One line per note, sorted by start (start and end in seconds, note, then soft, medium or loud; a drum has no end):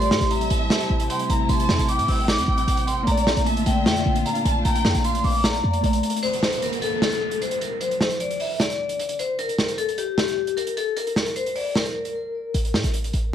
0.00 0.13 A1 loud
0.00 3.04 C3 medium
0.00 3.03 G3 medium
0.00 3.01 A3 medium
0.00 6.19 C4 medium
0.00 3.04 E4 medium
0.00 3.03 G4 medium
0.00 3.05 C5 medium
0.00 0.29 D5 loud
0.00 0.29 C6 loud
0.00 closed hi-hat medium
0.11 0.20 A2 loud
0.11 snare loud
0.21 0.49 A1 loud
0.21 closed hi-hat medium
0.31 1.06 E5 loud
0.31 0.48 A#5 medium
0.31 closed hi-hat medium
0.41 closed hi-hat medium
0.50 0.70 A1 loud
0.50 0.68 A5 medium
0.50 closed hi-hat medium
0.70 1.08 A5 medium
0.70 snare loud
0.80 closed hi-hat medium
0.90 1.09 A1 loud
1.00 closed hi-hat medium
1.10 1.29 G5 medium
1.10 1.27 C6 medium
1.10 closed hi-hat medium
1.19 closed hi-hat medium
1.29 1.49 A1 loud
1.29 1.48 A#5 medium
1.29 1.47 A#5 medium
1.29 closed hi-hat medium
1.49 1.68 A1 loud
1.49 1.87 A5 loud
1.49 1.86 C6 medium
1.49 closed hi-hat medium
1.60 closed hi-hat medium
1.69 1.78 E2 loud
1.69 snare loud
1.79 2.00 A1 loud
1.79 closed hi-hat medium
1.89 3.03 G5 medium
1.89 2.06 D6 medium
1.89 closed hi-hat medium
1.99 2.08 A2 loud
1.99 closed hi-hat medium
2.08 2.40 A1 loud
2.08 2.26 E6 medium
2.08 open hi-hat medium
2.28 2.84 D6 medium
2.28 snare loud
2.28 hi-hat pedal medium
2.38 2.47 E2 loud
2.38 closed hi-hat medium
2.48 2.67 A1 loud
2.58 closed hi-hat medium
2.68 2.99 A1 loud
2.68 closed hi-hat medium
2.77 closed hi-hat medium
2.87 3.05 C6 medium
2.87 closed hi-hat medium
2.97 3.07 G1 loud
3.03 5.77 A#3 medium
3.07 3.36 A#1 loud
3.07 6.20 A#2 medium
3.07 6.20 D3 medium
3.07 5.80 A3 medium
3.07 6.20 F4 loud
3.07 3.44 D5 loud
3.07 3.44 A#5 loud
3.07 closed hi-hat medium
3.12 5.82 D5 medium
3.17 closed hi-hat medium
3.27 snare loud
3.37 3.65 A#1 loud
3.37 closed hi-hat medium
3.46 4.21 E5 medium
3.46 3.64 A5 medium
3.46 closed hi-hat medium
3.57 closed hi-hat medium
3.66 3.88 A#1 loud
3.66 3.84 G5 medium
3.66 closed hi-hat medium
3.86 4.05 F2 loud
3.86 4.23 G5 medium
3.86 snare loud
3.96 closed hi-hat medium
4.06 4.25 A#1 loud
4.16 closed hi-hat medium
4.26 4.44 F5 medium
4.26 4.43 A#5 medium
4.26 closed hi-hat medium
4.35 closed hi-hat medium
4.45 4.64 A#1 loud
4.45 4.63 A5 medium
4.45 4.64 A5 medium
4.45 closed hi-hat medium
4.65 4.84 A#1 loud
4.65 5.02 G5 loud
4.65 5.02 A#5 loud
4.65 closed hi-hat medium
4.75 closed hi-hat medium
4.85 4.94 F2 loud
4.85 snare loud
4.95 5.23 A#1 loud
4.95 closed hi-hat medium
5.04 5.42 F5 medium
5.04 5.22 C6 medium
5.04 closed hi-hat medium
5.15 closed hi-hat medium
5.24 5.62 A#1 loud
5.24 5.42 D6 medium
5.24 open hi-hat medium
5.44 5.81 D5 medium
5.44 6.19 A#5 medium
5.44 snare loud
5.44 hi-hat pedal medium
5.54 closed hi-hat medium
5.64 5.83 F2 loud
5.73 closed hi-hat medium
5.81 6.02 A#1 loud
5.81 6.23 A3 medium
5.81 6.22 A#3 soft
5.81 closed hi-hat medium
5.85 6.24 D5 medium
5.93 closed hi-hat medium
6.03 closed hi-hat medium
6.10 closed hi-hat medium
6.16 closed hi-hat medium
6.23 6.60 C5 loud
6.23 closed hi-hat medium
6.23 downlifter medium
6.33 closed hi-hat medium
6.43 snare loud
6.52 closed hi-hat medium
6.62 6.80 A#4 medium
6.62 closed hi-hat medium
6.73 closed hi-hat medium
6.82 7.00 A4 medium
6.82 closed hi-hat medium
7.02 7.39 A4 medium
7.02 snare loud
7.12 closed hi-hat medium
7.31 closed hi-hat medium
7.42 7.59 C5 medium
7.42 closed hi-hat medium
7.51 closed hi-hat medium
7.61 7.79 A#4 medium
7.61 closed hi-hat medium
7.81 8.18 C5 medium
7.81 closed hi-hat medium
7.91 closed hi-hat medium
8.01 snare loud
8.10 closed hi-hat medium
8.20 8.38 D5 medium
8.20 closed hi-hat medium
8.31 closed hi-hat medium
8.40 8.58 E5 medium
8.40 open hi-hat medium
8.60 9.16 D5 medium
8.60 snare loud
8.60 hi-hat pedal medium
8.70 closed hi-hat medium
8.89 closed hi-hat medium
9.00 closed hi-hat medium
9.09 closed hi-hat medium
9.19 9.37 C5 medium
9.19 closed hi-hat medium
9.39 9.76 A#4 medium
9.39 closed hi-hat medium
9.49 closed hi-hat medium
9.59 snare loud
9.68 closed hi-hat medium
9.78 9.96 A4 medium
9.78 closed hi-hat medium
9.89 closed hi-hat medium
9.98 10.16 G4 medium
9.98 closed hi-hat medium
10.18 10.55 G4 medium
10.18 snare loud
10.28 closed hi-hat medium
10.47 closed hi-hat medium
10.57 10.75 A#4 medium
10.57 closed hi-hat medium
10.67 closed hi-hat medium
10.77 10.95 A4 medium
10.77 closed hi-hat medium
10.97 11.34 A#4 loud
10.97 closed hi-hat medium
11.07 closed hi-hat medium
11.16 snare loud
11.26 closed hi-hat medium
11.36 11.54 C5 medium
11.36 closed hi-hat medium
11.46 closed hi-hat medium
11.56 11.73 D5 medium
11.56 open hi-hat medium
11.76 12.51 A#4 medium
11.76 snare loud
11.76 hi-hat pedal medium
11.85 closed hi-hat medium
12.05 closed hi-hat soft
12.54 12.76 A1 loud
12.54 closed hi-hat medium
12.65 closed hi-hat soft
12.74 12.84 A2 loud
12.74 snare loud
12.84 13.13 A1 loud
12.84 closed hi-hat medium
12.94 closed hi-hat medium
13.04 closed hi-hat medium
13.13 13.33 A1 loud
13.13 closed hi-hat medium